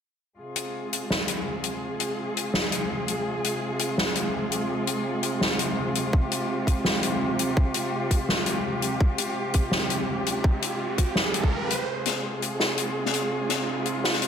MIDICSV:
0, 0, Header, 1, 4, 480
1, 0, Start_track
1, 0, Key_signature, -4, "minor"
1, 0, Tempo, 359281
1, 512, Time_signature, 4, 2, 24, 8
1, 19073, End_track
2, 0, Start_track
2, 0, Title_t, "Cello section"
2, 0, Program_c, 0, 48
2, 507, Note_on_c, 0, 48, 74
2, 508, Note_on_c, 0, 56, 69
2, 509, Note_on_c, 0, 68, 80
2, 510, Note_on_c, 0, 65, 67
2, 8137, Note_off_c, 0, 68, 0
2, 8194, Note_on_c, 0, 67, 85
2, 15816, Note_off_c, 0, 48, 0
2, 15817, Note_off_c, 0, 56, 0
2, 15818, Note_off_c, 0, 65, 0
2, 15820, Note_off_c, 0, 67, 0
2, 15875, Note_on_c, 0, 48, 80
2, 15875, Note_on_c, 0, 56, 72
2, 15875, Note_on_c, 0, 65, 73
2, 15876, Note_on_c, 0, 68, 85
2, 19073, Note_off_c, 0, 48, 0
2, 19073, Note_off_c, 0, 56, 0
2, 19073, Note_off_c, 0, 65, 0
2, 19073, Note_off_c, 0, 68, 0
2, 19073, End_track
3, 0, Start_track
3, 0, Title_t, "Riser"
3, 0, Program_c, 1, 103
3, 12030, Note_on_c, 1, 60, 71
3, 15870, Note_off_c, 1, 60, 0
3, 15870, Note_on_c, 1, 60, 76
3, 19073, Note_off_c, 1, 60, 0
3, 19073, End_track
4, 0, Start_track
4, 0, Title_t, "Drums"
4, 744, Note_on_c, 9, 42, 79
4, 878, Note_off_c, 9, 42, 0
4, 1238, Note_on_c, 9, 42, 69
4, 1372, Note_off_c, 9, 42, 0
4, 1475, Note_on_c, 9, 38, 101
4, 1608, Note_off_c, 9, 38, 0
4, 1707, Note_on_c, 9, 42, 83
4, 1841, Note_off_c, 9, 42, 0
4, 2185, Note_on_c, 9, 42, 73
4, 2319, Note_off_c, 9, 42, 0
4, 2670, Note_on_c, 9, 42, 80
4, 2803, Note_off_c, 9, 42, 0
4, 3163, Note_on_c, 9, 42, 73
4, 3296, Note_off_c, 9, 42, 0
4, 3389, Note_on_c, 9, 38, 113
4, 3522, Note_off_c, 9, 38, 0
4, 3634, Note_on_c, 9, 42, 87
4, 3767, Note_off_c, 9, 42, 0
4, 4114, Note_on_c, 9, 42, 68
4, 4248, Note_off_c, 9, 42, 0
4, 4601, Note_on_c, 9, 42, 81
4, 4735, Note_off_c, 9, 42, 0
4, 5068, Note_on_c, 9, 42, 77
4, 5201, Note_off_c, 9, 42, 0
4, 5315, Note_on_c, 9, 38, 104
4, 5448, Note_off_c, 9, 38, 0
4, 5550, Note_on_c, 9, 42, 81
4, 5684, Note_off_c, 9, 42, 0
4, 6034, Note_on_c, 9, 42, 67
4, 6167, Note_off_c, 9, 42, 0
4, 6508, Note_on_c, 9, 42, 83
4, 6642, Note_off_c, 9, 42, 0
4, 6984, Note_on_c, 9, 42, 64
4, 7118, Note_off_c, 9, 42, 0
4, 7229, Note_on_c, 9, 38, 116
4, 7362, Note_off_c, 9, 38, 0
4, 7469, Note_on_c, 9, 42, 76
4, 7602, Note_off_c, 9, 42, 0
4, 7953, Note_on_c, 9, 42, 69
4, 8086, Note_off_c, 9, 42, 0
4, 8192, Note_on_c, 9, 36, 108
4, 8326, Note_off_c, 9, 36, 0
4, 8437, Note_on_c, 9, 42, 77
4, 8571, Note_off_c, 9, 42, 0
4, 8912, Note_on_c, 9, 36, 57
4, 8918, Note_on_c, 9, 42, 67
4, 9045, Note_off_c, 9, 36, 0
4, 9052, Note_off_c, 9, 42, 0
4, 9145, Note_on_c, 9, 38, 104
4, 9279, Note_off_c, 9, 38, 0
4, 9389, Note_on_c, 9, 42, 75
4, 9522, Note_off_c, 9, 42, 0
4, 9873, Note_on_c, 9, 42, 68
4, 10007, Note_off_c, 9, 42, 0
4, 10111, Note_on_c, 9, 36, 109
4, 10245, Note_off_c, 9, 36, 0
4, 10343, Note_on_c, 9, 42, 83
4, 10476, Note_off_c, 9, 42, 0
4, 10831, Note_on_c, 9, 42, 64
4, 10832, Note_on_c, 9, 36, 54
4, 10965, Note_off_c, 9, 36, 0
4, 10965, Note_off_c, 9, 42, 0
4, 11071, Note_on_c, 9, 38, 99
4, 11205, Note_off_c, 9, 38, 0
4, 11302, Note_on_c, 9, 42, 76
4, 11436, Note_off_c, 9, 42, 0
4, 11785, Note_on_c, 9, 42, 64
4, 11919, Note_off_c, 9, 42, 0
4, 12031, Note_on_c, 9, 36, 108
4, 12164, Note_off_c, 9, 36, 0
4, 12266, Note_on_c, 9, 42, 87
4, 12400, Note_off_c, 9, 42, 0
4, 12739, Note_on_c, 9, 42, 70
4, 12751, Note_on_c, 9, 36, 54
4, 12873, Note_off_c, 9, 42, 0
4, 12885, Note_off_c, 9, 36, 0
4, 12979, Note_on_c, 9, 38, 91
4, 13112, Note_off_c, 9, 38, 0
4, 13227, Note_on_c, 9, 42, 74
4, 13360, Note_off_c, 9, 42, 0
4, 13714, Note_on_c, 9, 42, 70
4, 13847, Note_off_c, 9, 42, 0
4, 13950, Note_on_c, 9, 36, 110
4, 14084, Note_off_c, 9, 36, 0
4, 14193, Note_on_c, 9, 42, 82
4, 14327, Note_off_c, 9, 42, 0
4, 14669, Note_on_c, 9, 42, 66
4, 14671, Note_on_c, 9, 36, 55
4, 14803, Note_off_c, 9, 42, 0
4, 14805, Note_off_c, 9, 36, 0
4, 14902, Note_on_c, 9, 38, 102
4, 15035, Note_off_c, 9, 38, 0
4, 15150, Note_on_c, 9, 42, 79
4, 15277, Note_on_c, 9, 36, 54
4, 15283, Note_off_c, 9, 42, 0
4, 15410, Note_off_c, 9, 36, 0
4, 15637, Note_on_c, 9, 42, 76
4, 15771, Note_off_c, 9, 42, 0
4, 16106, Note_on_c, 9, 42, 92
4, 16114, Note_on_c, 9, 40, 80
4, 16239, Note_off_c, 9, 42, 0
4, 16248, Note_off_c, 9, 40, 0
4, 16596, Note_on_c, 9, 42, 75
4, 16729, Note_off_c, 9, 42, 0
4, 16827, Note_on_c, 9, 38, 106
4, 16960, Note_off_c, 9, 38, 0
4, 17069, Note_on_c, 9, 42, 78
4, 17202, Note_off_c, 9, 42, 0
4, 17443, Note_on_c, 9, 40, 74
4, 17550, Note_on_c, 9, 42, 70
4, 17576, Note_off_c, 9, 40, 0
4, 17684, Note_off_c, 9, 42, 0
4, 18025, Note_on_c, 9, 40, 74
4, 18033, Note_on_c, 9, 42, 83
4, 18159, Note_off_c, 9, 40, 0
4, 18167, Note_off_c, 9, 42, 0
4, 18511, Note_on_c, 9, 42, 72
4, 18644, Note_off_c, 9, 42, 0
4, 18756, Note_on_c, 9, 38, 107
4, 18876, Note_on_c, 9, 40, 51
4, 18889, Note_off_c, 9, 38, 0
4, 18995, Note_on_c, 9, 42, 83
4, 19010, Note_off_c, 9, 40, 0
4, 19073, Note_off_c, 9, 42, 0
4, 19073, End_track
0, 0, End_of_file